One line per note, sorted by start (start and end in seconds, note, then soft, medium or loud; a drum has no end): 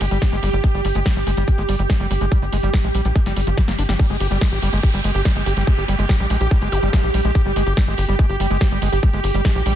0.00 0.08 G1 loud
0.00 0.05 G#3 medium
0.00 3.98 G4 medium
0.00 open hi-hat loud
0.00 maracas medium
0.11 0.19 G1 medium
0.11 0.18 G3 medium
0.11 closed hi-hat medium
0.11 maracas soft
0.22 0.24 G3 medium
0.22 kick loud
0.22 snare loud
0.22 closed hi-hat medium
0.22 maracas soft
0.32 0.40 G1 medium
0.32 0.37 G#3 medium
0.32 closed hi-hat soft
0.43 0.50 G1 loud
0.43 0.49 G3 medium
0.43 open hi-hat loud
0.43 maracas loud
0.53 0.60 G1 medium
0.53 0.56 G3 medium
0.53 closed hi-hat medium
0.53 maracas medium
0.63 0.68 G#3 medium
0.63 kick loud
0.63 closed hi-hat medium
0.63 maracas soft
0.74 0.81 G1 medium
0.74 0.81 G3 medium
0.84 0.92 G1 loud
0.84 0.87 G3 medium
0.84 open hi-hat loud
0.84 maracas medium
0.95 1.02 G1 medium
0.95 1.00 G#3 medium
0.95 closed hi-hat medium
0.95 maracas medium
1.06 1.12 G3 medium
1.06 kick loud
1.06 snare loud
1.06 closed hi-hat medium
1.06 maracas soft
1.16 1.23 G#1 medium
1.16 1.19 G3 medium
1.27 1.34 G1 loud
1.27 1.31 G#3 medium
1.27 open hi-hat loud
1.27 maracas medium
1.37 1.44 G1 medium
1.37 1.44 G3 medium
1.37 closed hi-hat medium
1.37 maracas medium
1.48 1.50 G3 medium
1.48 kick loud
1.48 closed hi-hat medium
1.48 maracas soft
1.58 1.65 G1 medium
1.58 1.63 G#3 medium
1.58 closed hi-hat soft
1.69 1.76 G1 loud
1.69 1.75 G3 medium
1.69 open hi-hat loud
1.69 maracas medium
1.78 1.86 G1 medium
1.78 1.82 G3 medium
1.78 closed hi-hat medium
1.78 maracas soft
1.90 1.94 G#3 medium
1.90 kick loud
1.90 snare loud
1.90 closed hi-hat medium
1.90 maracas soft
2.00 2.07 G1 medium
2.00 2.07 G3 medium
2.00 closed hi-hat soft
2.11 2.18 G1 loud
2.11 2.13 G3 medium
2.11 open hi-hat loud
2.11 maracas medium
2.21 2.28 G1 medium
2.21 2.25 G#3 medium
2.21 closed hi-hat medium
2.21 maracas soft
2.32 2.38 G3 medium
2.32 kick loud
2.32 closed hi-hat medium
2.32 maracas soft
2.42 2.49 G1 medium
2.42 2.45 G3 medium
2.53 2.60 G1 loud
2.53 2.57 G#3 medium
2.53 open hi-hat loud
2.53 maracas medium
2.63 2.70 G1 medium
2.63 2.70 G3 medium
2.63 closed hi-hat medium
2.63 maracas medium
2.73 2.76 G3 medium
2.73 kick loud
2.73 snare loud
2.73 closed hi-hat medium
2.73 maracas soft
2.84 2.91 A#1 medium
2.84 2.88 G#3 medium
2.84 closed hi-hat soft
2.94 3.02 A#1 loud
2.94 3.01 G3 medium
2.94 open hi-hat loud
2.94 maracas medium
3.05 3.12 A#1 medium
3.05 3.08 G3 medium
3.05 closed hi-hat medium
3.05 maracas medium
3.16 3.20 G#3 medium
3.16 kick loud
3.16 closed hi-hat medium
3.16 maracas soft
3.26 3.33 G1 medium
3.26 3.33 G3 medium
3.26 snare soft
3.26 closed hi-hat soft
3.36 3.44 G1 medium
3.36 3.41 G3 medium
3.36 open hi-hat loud
3.36 maracas medium
3.47 3.54 G1 loud
3.47 3.50 F3 medium
3.47 closed hi-hat medium
3.47 maracas soft
3.57 3.62 G3 medium
3.57 kick loud
3.57 snare medium
3.57 closed hi-hat medium
3.57 maracas soft
3.68 3.75 G1 medium
3.68 3.72 A#3 medium
3.68 snare medium
3.68 closed hi-hat soft
3.78 3.86 G1 loud
3.78 3.83 D4 medium
3.78 open hi-hat loud
3.78 maracas loud
3.88 3.96 G1 medium
3.88 3.93 G3 loud
3.88 snare medium
3.88 closed hi-hat medium
3.88 maracas medium
3.99 4.06 G3 medium
3.99 9.76 G4 medium
3.99 kick loud
3.99 closed hi-hat medium
3.99 downlifter medium
3.99 maracas soft
4.10 4.17 G1 medium
4.10 4.16 G#3 medium
4.20 4.28 G1 loud
4.20 4.27 G4 medium
4.20 open hi-hat loud
4.20 maracas loud
4.31 4.38 G1 medium
4.31 4.37 G3 medium
4.31 closed hi-hat medium
4.31 maracas medium
4.41 4.48 G#3 medium
4.41 kick loud
4.41 snare loud
4.41 closed hi-hat medium
4.41 maracas soft
4.52 4.59 G#1 medium
4.52 4.58 G4 medium
4.62 4.70 G1 loud
4.62 4.69 G3 medium
4.62 open hi-hat loud
4.62 maracas medium
4.72 4.80 G1 medium
4.72 4.79 G#3 medium
4.72 closed hi-hat medium
4.72 maracas medium
4.83 4.90 G4 medium
4.83 kick loud
4.83 closed hi-hat medium
4.83 maracas soft
4.94 5.01 G1 medium
4.94 5.00 G3 medium
4.94 closed hi-hat soft
5.04 5.12 G1 loud
5.04 5.11 G#3 medium
5.04 open hi-hat loud
5.04 maracas loud
5.15 5.22 G1 medium
5.15 5.21 G4 medium
5.15 closed hi-hat medium
5.15 maracas soft
5.25 5.32 G3 medium
5.25 kick loud
5.25 snare loud
5.25 closed hi-hat medium
5.25 maracas soft
5.36 5.43 G1 medium
5.36 5.42 G#3 medium
5.36 closed hi-hat soft
5.46 5.53 G1 loud
5.46 5.53 G4 medium
5.46 open hi-hat loud
5.46 maracas medium
5.57 5.64 G1 medium
5.57 5.63 G3 medium
5.57 open hi-hat medium
5.57 maracas medium
5.67 5.74 G#3 medium
5.67 kick loud
5.67 closed hi-hat medium
5.67 maracas soft
5.78 5.85 G1 medium
5.78 5.84 G4 medium
5.88 5.95 G1 loud
5.88 5.95 G3 medium
5.88 open hi-hat loud
5.88 maracas loud
5.99 6.06 G1 medium
5.99 6.05 G#3 medium
5.99 closed hi-hat medium
5.99 maracas medium
6.09 6.16 G4 medium
6.09 kick loud
6.09 snare loud
6.09 closed hi-hat medium
6.09 maracas soft
6.20 6.27 A#1 medium
6.20 6.26 G3 medium
6.30 6.37 A#1 loud
6.30 6.37 G#3 medium
6.30 open hi-hat loud
6.30 maracas loud
6.40 6.48 A#1 medium
6.40 6.47 G4 medium
6.40 closed hi-hat medium
6.40 maracas medium
6.51 6.58 G3 medium
6.51 kick loud
6.51 closed hi-hat medium
6.51 maracas soft
6.62 6.69 G1 medium
6.62 6.68 G#3 medium
6.62 closed hi-hat soft
6.72 6.79 G1 loud
6.72 6.79 G4 medium
6.72 open hi-hat loud
6.72 zap medium
6.72 maracas loud
6.83 6.90 G1 loud
6.83 6.89 G3 medium
6.83 closed hi-hat medium
6.83 maracas medium
6.93 7.00 G#3 medium
6.93 kick loud
6.93 snare loud
6.93 closed hi-hat medium
6.93 maracas soft
7.04 7.11 A#1 medium
7.04 7.10 G4 medium
7.04 closed hi-hat soft
7.14 7.21 A#1 loud
7.14 7.21 G3 medium
7.14 open hi-hat loud
7.14 maracas loud
7.25 7.32 A#1 loud
7.25 7.31 G#3 medium
7.25 closed hi-hat medium
7.25 maracas medium
7.35 7.42 G4 medium
7.35 kick loud
7.35 closed hi-hat medium
7.35 maracas soft
7.46 7.53 G1 medium
7.46 7.52 G3 medium
7.56 7.63 G1 loud
7.56 7.63 G#3 medium
7.56 open hi-hat loud
7.56 maracas loud
7.66 7.74 G1 medium
7.66 7.73 G4 medium
7.66 closed hi-hat medium
7.66 maracas medium
7.77 7.84 G3 medium
7.77 kick loud
7.77 snare loud
7.77 closed hi-hat medium
7.77 maracas soft
7.88 7.95 G#1 medium
7.88 7.94 G#3 medium
7.97 8.05 G1 loud
7.97 8.05 G4 medium
7.97 open hi-hat loud
7.97 maracas loud
8.08 8.16 G1 medium
8.08 8.15 G3 medium
8.08 closed hi-hat medium
8.08 maracas medium
8.19 8.26 G#3 medium
8.19 kick loud
8.19 closed hi-hat medium
8.19 maracas soft
8.29 8.37 G1 medium
8.29 8.36 G4 medium
8.29 closed hi-hat soft
8.40 8.47 G1 loud
8.40 8.47 G3 medium
8.40 open hi-hat loud
8.40 maracas loud
8.50 8.58 G1 medium
8.50 8.57 G#3 medium
8.50 closed hi-hat medium
8.50 maracas medium
8.61 8.68 G4 medium
8.61 kick loud
8.61 snare loud
8.61 closed hi-hat medium
8.61 maracas soft
8.71 8.79 G1 medium
8.71 8.78 G3 medium
8.71 closed hi-hat soft
8.82 8.89 G1 loud
8.82 8.88 G#3 medium
8.82 open hi-hat loud
8.82 maracas medium
8.92 9.00 G1 loud
8.92 8.99 G4 medium
8.92 open hi-hat medium
8.92 maracas medium
9.03 9.09 G3 medium
9.03 kick loud
9.03 closed hi-hat medium
9.03 maracas soft
9.13 9.21 G1 medium
9.13 9.20 G#3 medium
9.13 closed hi-hat soft
9.24 9.31 G1 loud
9.24 9.30 G4 medium
9.24 open hi-hat loud
9.24 maracas loud
9.34 9.42 G1 medium
9.34 9.41 G3 medium
9.34 closed hi-hat medium
9.34 maracas medium
9.45 9.51 G#3 medium
9.45 kick loud
9.45 snare loud
9.45 closed hi-hat medium
9.45 maracas soft
9.55 9.63 A#1 medium
9.55 9.62 G4 medium
9.66 9.73 A#1 loud
9.66 9.72 G3 medium
9.66 open hi-hat loud
9.66 maracas medium